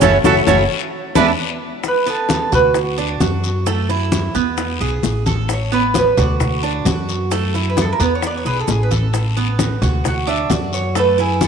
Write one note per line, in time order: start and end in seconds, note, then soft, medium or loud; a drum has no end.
0.01 0.19 F#1 loud
0.01 0.16 F#3 medium
0.01 0.16 A3 medium
0.01 0.16 C#4 medium
0.01 0.16 E4 medium
0.01 0.16 F#4 medium
0.01 0.13 A4 loud
0.01 0.17 C#5 medium
0.01 0.17 E5 medium
0.01 0.17 F#5 medium
0.01 high bongo medium
0.01 high conga loud
0.01 long guiro medium
0.01 maracas loud
0.24 0.41 F#1 medium
0.24 0.39 F#3 loud
0.24 0.39 A3 loud
0.24 0.39 C#4 loud
0.24 0.39 C#4 medium
0.24 0.39 E4 loud
0.24 0.39 F#4 medium
0.24 0.36 A4 loud
0.24 0.40 C#5 medium
0.24 0.40 E5 loud
0.24 0.40 F#5 loud
0.24 high bongo loud
0.24 high conga medium
0.24 long guiro loud
0.24 maracas loud
0.47 0.64 F#1 medium
0.47 0.62 F#3 loud
0.47 0.62 A3 loud
0.47 0.62 C#4 medium
0.47 0.62 C#4 loud
0.47 0.62 E4 medium
0.47 0.62 F#4 medium
0.47 0.58 A4 medium
0.47 0.63 C#5 medium
0.47 0.63 E5 medium
0.47 0.63 F#5 medium
0.47 high bongo loud
0.47 high conga medium
0.47 long guiro loud
0.47 maracas loud
1.15 1.33 E2 medium
1.15 1.30 E3 medium
1.15 1.30 G#3 medium
1.15 1.30 B3 medium
1.15 1.30 D4 medium
1.15 1.30 E4 loud
1.15 1.27 B4 medium
1.15 1.31 D5 medium
1.15 1.31 E5 medium
1.15 1.31 G#5 medium
1.15 high bongo loud
1.15 high conga loud
1.15 long guiro loud
1.15 maracas loud
1.84 high bongo medium
1.84 high conga soft
1.84 long guiro medium
1.84 maracas medium
1.88 2.08 B4 medium
2.06 2.51 B3 medium
2.06 2.30 A4 medium
2.06 high bongo soft
2.06 high conga soft
2.06 maracas soft
2.29 high bongo medium
2.29 high conga medium
2.29 short guiro medium
2.29 maracas medium
2.34 2.54 A4 medium
2.52 3.17 D2 medium
2.52 2.97 F#4 medium
2.52 2.76 B4 medium
2.52 high bongo soft
2.52 low conga medium
2.52 short guiro medium
2.52 maracas soft
2.74 high bongo medium
2.74 high conga soft
2.74 long guiro medium
2.74 maracas medium
2.98 3.20 D4 medium
2.98 high bongo soft
2.98 high conga soft
2.98 maracas soft
3.20 4.29 F#2 medium
3.20 3.65 F#4 medium
3.20 high bongo soft
3.20 low bongo medium
3.20 high conga medium
3.20 short guiro medium
3.20 maracas medium
3.44 high conga soft
3.44 short guiro medium
3.44 maracas soft
3.66 3.89 A3 medium
3.66 high bongo medium
3.66 high conga soft
3.66 long guiro medium
3.66 maracas medium
3.89 4.34 E4 medium
3.89 high bongo soft
3.89 high conga soft
3.89 maracas soft
4.12 high bongo medium
4.12 high conga medium
4.12 short guiro medium
4.12 maracas medium
4.35 4.77 E2 medium
4.35 4.79 B3 medium
4.35 high bongo soft
4.35 high conga soft
4.35 short guiro medium
4.35 maracas soft
4.58 high bongo medium
4.58 high conga soft
4.58 long guiro medium
4.58 maracas medium
4.80 5.02 B1 medium
4.80 5.25 G#4 medium
4.80 high bongo soft
4.80 high conga soft
4.80 maracas soft
5.03 6.11 A1 medium
5.03 high bongo soft
5.03 low bongo medium
5.03 high conga soft
5.03 short guiro medium
5.03 maracas medium
5.26 5.71 A4 medium
5.26 high conga medium
5.26 short guiro medium
5.26 maracas soft
5.48 high bongo medium
5.48 high conga soft
5.48 long guiro medium
5.48 maracas medium
5.53 5.73 C#5 loud
5.72 6.16 B3 medium
5.72 5.95 B4 medium
5.72 high bongo soft
5.72 high conga soft
5.72 maracas soft
5.94 6.19 B4 medium
5.94 high bongo medium
5.94 high conga loud
5.94 short guiro medium
5.94 maracas medium
6.17 6.82 D2 loud
6.17 6.62 F#4 medium
6.17 6.32 D5 medium
6.17 high bongo soft
6.17 low conga medium
6.17 short guiro medium
6.17 maracas soft
6.40 high bongo medium
6.40 high conga soft
6.40 low conga medium
6.40 long guiro medium
6.40 maracas medium
6.63 6.85 D4 medium
6.63 high bongo soft
6.63 high conga soft
6.63 maracas soft
6.85 7.93 F#2 medium
6.85 7.30 F#4 medium
6.85 high bongo soft
6.85 low bongo medium
6.85 high conga medium
6.85 short guiro medium
6.85 maracas medium
7.09 high conga soft
7.09 short guiro medium
7.09 maracas soft
7.31 7.54 A3 medium
7.31 high bongo medium
7.31 high conga soft
7.31 long guiro medium
7.31 maracas medium
7.54 7.99 E4 medium
7.54 high bongo soft
7.54 high conga soft
7.54 maracas soft
7.70 7.79 B4 medium
7.77 high bongo medium
7.77 high conga medium
7.77 short guiro medium
7.77 maracas medium
7.81 7.90 A4 medium
7.93 8.02 A#4 medium
8.00 8.42 E2 loud
8.00 8.44 B3 medium
8.00 8.12 B4 medium
8.00 high bongo soft
8.00 high conga soft
8.00 short guiro medium
8.00 maracas soft
8.15 8.24 C#5 medium
8.22 high bongo medium
8.22 high conga soft
8.22 long guiro medium
8.22 maracas medium
8.27 8.36 D5 medium
8.38 8.47 C#5 medium
8.45 8.66 B1 medium
8.45 8.90 G#4 medium
8.45 8.57 B4 medium
8.45 high bongo soft
8.45 high conga soft
8.45 maracas soft
8.60 8.70 A4 medium
8.68 9.75 A1 medium
8.68 high bongo soft
8.68 low bongo medium
8.68 high conga soft
8.68 short guiro medium
8.68 maracas medium
8.72 8.81 G#4 medium
8.83 8.89 B4 medium
8.91 9.35 A4 medium
8.91 high conga medium
8.91 short guiro medium
8.91 maracas soft
9.13 high bongo medium
9.13 high conga soft
9.13 long guiro medium
9.13 maracas medium
9.37 9.81 B3 medium
9.37 high bongo soft
9.37 high conga soft
9.37 maracas soft
9.59 high bongo medium
9.59 high conga medium
9.59 short guiro medium
9.59 maracas medium
9.82 10.46 D2 medium
9.82 10.26 F#4 medium
9.82 high bongo soft
9.82 low conga medium
9.82 short guiro medium
9.82 maracas soft
10.04 10.28 F#5 medium
10.04 high bongo medium
10.04 high conga soft
10.04 low conga medium
10.04 long guiro medium
10.04 maracas medium
10.27 10.49 D4 medium
10.27 10.50 E5 medium
10.27 high bongo soft
10.27 high conga soft
10.27 maracas soft
10.50 11.47 F#2 medium
10.50 10.94 F#4 medium
10.50 10.74 D5 medium
10.50 high bongo soft
10.50 low bongo medium
10.50 high conga medium
10.50 short guiro medium
10.50 maracas medium
10.73 10.96 C#5 medium
10.73 high conga soft
10.73 short guiro medium
10.73 maracas soft
10.95 11.18 A3 medium
10.95 11.19 B4 medium
10.95 high bongo medium
10.95 high conga soft
10.95 long guiro medium
10.95 maracas medium
11.18 11.47 E4 medium
11.18 11.41 G#4 medium
11.18 high bongo soft
11.18 high conga soft
11.18 maracas soft
11.41 11.47 A4 medium
11.41 high bongo medium
11.41 high conga loud
11.41 short guiro medium
11.41 maracas medium